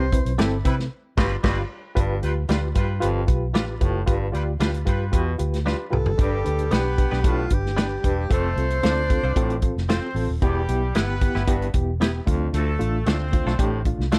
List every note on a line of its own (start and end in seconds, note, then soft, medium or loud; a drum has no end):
0.00 0.20 C2 loud
0.00 0.39 C5 loud
0.12 0.31 C4 medium
0.12 0.31 E4 medium
0.12 0.31 B4 medium
0.12 kick loud
0.12 closed hi-hat medium
0.25 0.37 B1 medium
0.25 closed hi-hat soft
0.38 0.61 G1 medium
0.38 0.48 G3 medium
0.38 0.57 C4 loud
0.38 0.49 C4 medium
0.38 0.57 E4 loud
0.38 0.49 E4 medium
0.38 0.57 A4 loud
0.38 0.49 B4 medium
0.38 snare medium
0.38 closed hi-hat medium
0.65 0.88 C3 medium
0.65 0.74 G3 medium
0.65 0.83 C4 medium
0.65 0.73 E4 medium
0.65 0.84 E4 medium
0.65 0.84 B4 loud
0.65 0.74 B4 loud
0.65 kick medium
0.65 closed hi-hat medium
0.80 snare soft
1.17 1.35 G1 loud
1.17 1.31 B2 medium
1.17 1.31 G3 loud
1.17 1.36 G3 loud
1.17 1.36 D4 medium
1.17 1.35 F4 medium
1.17 1.31 F4 loud
1.17 1.36 F4 medium
1.17 1.35 G4 medium
1.17 1.31 B4 medium
1.17 1.36 B4 medium
1.17 kick loud
1.17 snare loud
1.17 crash medium
1.43 1.62 G1 loud
1.43 1.57 B2 loud
1.43 1.61 G3 loud
1.43 1.58 G3 loud
1.43 1.62 D4 loud
1.43 1.62 F4 loud
1.43 1.58 F4 medium
1.43 1.62 F4 loud
1.43 1.62 G4 medium
1.43 1.62 B4 loud
1.43 1.58 B4 loud
1.43 kick loud
1.43 snare loud
1.43 crash medium
1.95 2.19 G1 medium
1.95 2.18 G2 medium
1.95 2.14 F4 loud
1.95 2.15 G4 medium
1.95 2.15 B4 loud
1.95 kick loud
1.95 closed hi-hat medium
2.22 2.46 D2 medium
2.22 2.32 G3 medium
2.22 2.41 F4 medium
2.22 2.32 F4 medium
2.22 2.41 G4 medium
2.22 2.42 B4 medium
2.22 2.32 B4 loud
2.22 closed hi-hat medium
2.49 2.72 D2 medium
2.49 2.59 G3 medium
2.49 2.61 G3 medium
2.49 2.59 D4 medium
2.49 2.68 F4 medium
2.49 2.60 F4 medium
2.49 2.61 F4 medium
2.49 2.68 G4 medium
2.49 2.68 B4 medium
2.49 2.61 B4 medium
2.49 2.60 B4 medium
2.49 snare medium
2.49 closed hi-hat medium
2.75 2.98 G2 loud
2.75 3.14 G3 medium
2.75 2.94 F4 medium
2.75 3.14 F4 medium
2.75 2.94 G4 medium
2.75 2.94 B4 medium
2.75 3.14 B4 medium
2.75 kick medium
2.75 closed hi-hat medium
3.00 3.25 G1 medium
3.00 3.23 F2 medium
3.00 3.20 F4 loud
3.00 3.20 G4 loud
3.00 3.20 B4 loud
3.00 closed hi-hat medium
3.27 3.54 B1 medium
3.27 3.46 F4 medium
3.27 3.47 G4 medium
3.27 3.47 B4 medium
3.27 kick medium
3.27 closed hi-hat medium
3.54 3.77 A1 medium
3.54 3.64 G3 medium
3.54 3.65 D4 medium
3.54 3.73 F4 medium
3.54 3.65 F4 medium
3.54 3.73 G4 medium
3.54 3.73 B4 medium
3.54 3.65 B4 medium
3.54 snare loud
3.54 closed hi-hat medium
3.81 4.04 F#1 medium
3.81 4.02 A2 medium
3.81 3.99 F4 medium
3.81 3.99 G4 medium
3.81 4.00 B4 loud
3.81 kick medium
3.81 closed hi-hat medium
4.06 4.30 G1 loud
4.06 4.28 G2 medium
4.06 4.26 F4 loud
4.06 4.26 G4 medium
4.06 4.26 B4 loud
4.06 kick loud
4.06 closed hi-hat medium
4.32 4.56 D2 medium
4.32 4.42 G3 medium
4.32 4.52 F4 medium
4.32 4.43 F4 medium
4.32 4.52 G4 medium
4.32 4.43 B4 medium
4.32 4.52 D5 medium
4.32 closed hi-hat medium
4.59 4.83 D2 medium
4.59 4.70 G3 medium
4.59 4.72 G3 medium
4.59 4.70 D4 medium
4.59 4.78 F4 medium
4.59 4.72 F4 medium
4.59 4.70 F4 medium
4.59 4.79 G4 medium
4.59 4.79 B4 medium
4.59 4.72 B4 medium
4.59 4.71 B4 medium
4.59 snare medium
4.59 closed hi-hat medium
4.74 closed hi-hat medium
4.85 5.10 G2 medium
4.85 5.25 G3 medium
4.85 5.05 F4 medium
4.85 5.25 F4 medium
4.85 5.05 G4 medium
4.85 5.05 B4 medium
4.85 5.25 B4 medium
4.85 kick medium
4.85 closed hi-hat medium
5.12 5.36 E2 medium
5.12 5.34 B2 medium
5.12 5.31 F4 loud
5.12 5.31 G4 loud
5.12 5.32 B4 loud
5.12 kick medium
5.12 closed hi-hat medium
5.38 5.74 D2 medium
5.38 5.58 F4 medium
5.38 5.58 G4 medium
5.38 5.58 B4 medium
5.38 closed hi-hat medium
5.54 snare soft
5.54 closed hi-hat soft
5.65 5.75 G3 medium
5.65 5.76 D4 medium
5.65 5.84 F4 medium
5.65 5.76 F4 medium
5.65 5.84 G4 medium
5.65 5.84 B4 medium
5.65 5.76 B4 medium
5.65 snare medium
5.90 6.04 C2 medium
5.90 6.10 F4 medium
5.90 6.10 G4 medium
5.90 6.76 A4 medium
5.90 6.10 B4 medium
5.90 mid tom medium
6.06 6.17 F#1 medium
6.06 floor tom medium
6.17 6.42 G1 loud
6.17 6.40 G2 medium
6.17 6.69 G3 medium
6.17 6.37 D4 medium
6.17 6.37 G4 medium
6.17 6.69 G4 loud
6.17 6.37 B4 medium
6.17 kick loud
6.17 closed hi-hat medium
6.44 6.68 D2 medium
6.44 6.63 D4 medium
6.44 6.64 G4 medium
6.44 6.64 B4 medium
6.44 closed hi-hat medium
6.59 closed hi-hat soft
6.71 7.06 B1 medium
6.71 6.81 B3 medium
6.71 7.47 B3 loud
6.71 6.90 D4 medium
6.71 6.81 D4 medium
6.71 6.90 G4 medium
6.71 6.82 G4 medium
6.71 7.30 G4 medium
6.71 7.47 B4 loud
6.71 6.91 B4 medium
6.71 6.82 B4 medium
6.71 snare medium
6.71 closed hi-hat medium
6.98 7.17 D4 medium
6.98 7.17 G4 medium
6.98 7.17 B4 medium
6.98 kick medium
6.98 closed hi-hat medium
7.11 7.46 B1 medium
7.11 7.19 B3 soft
7.11 7.19 D4 soft
7.11 7.19 G4 soft
7.11 7.19 B4 medium
7.11 snare soft
7.24 7.45 A2 medium
7.24 7.43 D4 medium
7.24 7.44 G4 medium
7.24 7.44 B4 loud
7.24 kick medium
7.24 closed hi-hat medium
7.28 7.55 F4 medium
7.50 7.96 G1 medium
7.50 7.70 D4 medium
7.50 7.70 G4 medium
7.50 8.32 G4 medium
7.50 7.70 B4 medium
7.50 kick medium
7.50 closed hi-hat medium
7.66 snare soft
7.76 7.87 B3 medium
7.76 7.87 D4 medium
7.76 7.96 D4 medium
7.76 7.87 G4 medium
7.76 7.96 G4 medium
7.76 7.87 B4 medium
7.76 7.96 B4 medium
7.76 snare loud
7.76 closed hi-hat medium
8.04 8.27 E1 medium
8.04 8.25 G2 medium
8.04 8.23 D4 medium
8.04 8.23 G4 medium
8.04 8.23 B4 medium
8.04 kick medium
8.04 closed hi-hat medium
8.30 8.53 F1 medium
8.30 8.52 F2 medium
8.30 8.80 A3 loud
8.30 8.49 C4 medium
8.30 8.49 F4 medium
8.30 8.49 A4 medium
8.30 8.80 A4 loud
8.30 kick loud
8.30 closed hi-hat medium
8.34 9.87 C5 loud
8.56 8.79 C2 medium
8.56 8.76 C4 medium
8.56 8.76 F4 medium
8.56 8.76 A4 medium
8.56 closed hi-hat medium
8.70 closed hi-hat soft
8.83 9.17 D2 medium
8.83 9.02 C4 medium
8.83 8.93 C4 medium
8.83 9.58 D4 loud
8.83 9.02 F4 medium
8.83 8.93 F4 medium
8.83 9.02 A4 medium
8.83 8.93 A4 medium
8.83 8.93 C5 medium
8.83 9.59 D5 loud
8.83 snare medium
8.83 closed hi-hat medium
9.09 9.28 C4 medium
9.09 9.28 F4 medium
9.09 9.28 A4 medium
9.09 kick medium
9.09 closed hi-hat medium
9.23 9.34 C2 medium
9.23 9.31 C4 soft
9.23 9.31 F4 soft
9.23 9.31 A4 medium
9.23 9.31 C5 medium
9.36 9.57 A2 medium
9.36 9.55 C4 loud
9.36 9.55 F4 loud
9.36 9.55 A4 loud
9.36 kick loud
9.36 closed hi-hat medium
9.50 closed hi-hat soft
9.62 9.81 C4 medium
9.62 9.81 F4 medium
9.62 9.81 A4 medium
9.62 kick medium
9.62 closed hi-hat medium
9.76 9.99 F1 medium
9.76 snare soft
9.89 10.26 C4 loud
9.89 10.08 C4 medium
9.89 9.99 C4 medium
9.89 9.99 F4 medium
9.89 10.08 F4 medium
9.89 10.08 A4 medium
9.89 9.99 A4 medium
9.89 10.26 C5 loud
9.89 9.99 C5 medium
9.89 snare loud
9.89 closed hi-hat medium
10.15 10.26 A1 medium
10.15 10.34 C4 medium
10.15 10.34 F4 medium
10.15 10.34 A4 loud
10.15 open hi-hat soft
10.29 10.40 D#1 medium
10.42 10.65 E1 loud
10.42 10.63 E2 medium
10.42 10.92 G3 medium
10.42 10.61 B3 loud
10.42 10.61 E4 medium
10.42 10.92 G4 loud
10.42 10.61 G4 loud
10.42 kick loud
10.42 closed hi-hat medium
10.68 10.91 B1 medium
10.68 10.87 B3 medium
10.68 10.87 E4 medium
10.68 10.87 G4 medium
10.68 closed hi-hat medium
10.95 11.29 G1 medium
10.95 11.70 B3 loud
10.95 11.05 B3 medium
10.95 11.14 B3 medium
10.95 11.05 E4 medium
10.95 11.14 E4 medium
10.95 11.14 G4 medium
10.95 11.05 G4 medium
10.95 11.70 B4 loud
10.95 11.05 B4 medium
10.95 snare medium
10.95 closed hi-hat medium
11.21 11.40 B3 medium
11.21 11.40 E4 medium
11.21 11.40 G4 medium
11.21 kick medium
11.21 closed hi-hat medium
11.35 11.69 G1 medium
11.35 11.43 B3 soft
11.35 11.43 E4 medium
11.35 11.43 G4 medium
11.35 11.42 B4 medium
11.35 snare soft
11.47 11.69 G2 medium
11.47 11.66 B3 loud
11.47 11.66 E4 loud
11.47 11.67 G4 loud
11.47 kick medium
11.47 closed hi-hat medium
11.62 closed hi-hat soft
11.74 12.20 E1 medium
11.74 11.93 B3 medium
11.74 11.93 E4 medium
11.74 11.93 G4 medium
11.74 kick medium
11.74 closed hi-hat medium
12.00 12.19 B3 medium
12.00 12.10 B3 medium
12.00 12.19 E4 medium
12.00 12.11 E4 medium
12.00 12.20 G4 medium
12.00 12.11 G4 medium
12.00 12.11 B4 loud
12.00 snare loud
12.00 closed hi-hat medium
12.26 12.50 D2 medium
12.26 12.49 F2 medium
12.26 12.69 A3 medium
12.26 12.69 D4 medium
12.26 12.69 F4 loud
12.26 kick loud
12.26 closed hi-hat medium
12.53 12.76 D2 medium
12.53 12.75 D2 medium
12.53 13.04 A3 loud
12.53 13.04 A4 loud
12.53 closed hi-hat medium
12.79 13.03 A1 medium
12.79 12.98 A3 medium
12.79 12.98 D4 medium
12.79 12.98 F4 loud
12.79 closed hi-hat medium
13.06 13.40 D2 medium
13.06 13.25 A3 medium
13.06 13.16 A3 medium
13.06 13.82 C4 loud
13.06 13.25 D4 medium
13.06 13.17 D4 medium
13.06 13.25 F4 medium
13.06 13.17 F4 medium
13.06 13.17 A4 medium
13.06 13.81 C5 loud
13.06 snare medium
13.06 closed hi-hat medium
13.32 13.51 A3 medium
13.32 13.51 D4 medium
13.32 13.52 F4 medium
13.32 kick medium
13.32 closed hi-hat medium
13.46 13.57 B1 medium
13.46 13.54 A3 soft
13.46 13.54 D4 soft
13.46 13.54 F4 medium
13.46 13.54 A4 medium
13.46 snare soft
13.59 13.93 A1 medium
13.59 13.80 A2 medium
13.59 13.78 A3 loud
13.59 13.78 D4 loud
13.59 13.78 G4 loud
13.59 kick medium
13.59 closed hi-hat medium
13.85 14.04 A3 medium
13.85 14.05 D4 medium
13.85 14.05 F4 medium
13.85 kick medium
13.85 closed hi-hat medium
13.98 14.19 C2 medium
13.98 snare soft
14.12 14.19 A3 medium
14.12 14.19 D4 medium
14.12 14.19 D4 loud
14.12 14.19 F4 medium
14.12 14.19 A4 medium
14.12 14.19 D5 loud
14.12 snare loud
14.12 closed hi-hat medium